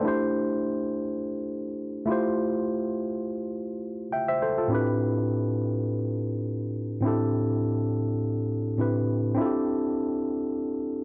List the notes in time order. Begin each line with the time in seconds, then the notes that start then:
Already playing: A4
0.01 A3 D4 E4
0.06 G4 C5
2.05 A3 E4 F4
2.10 G4 C5
4.12 E5 G5
4.28 C5 E5
4.42 A4 C5
4.58 F4 A4
4.68 A2 C4 D4 E4
4.73 G4 B4
7.01 A2 C4 D4 E4
7.06 G4 A4
8.78 A2 C4 D4 E4 G4 B4
9.35 C4 D4 E4
9.40 F4 A4
9.46 G4